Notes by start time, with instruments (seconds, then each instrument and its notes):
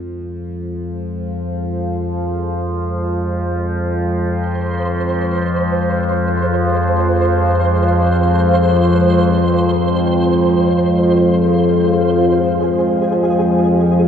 Already playing: synth drone F2 F3, ambient pad G#3 F4 C5 F5
4.23 synth texture C5
12.24 synth drone F2 F3, synth texture G#4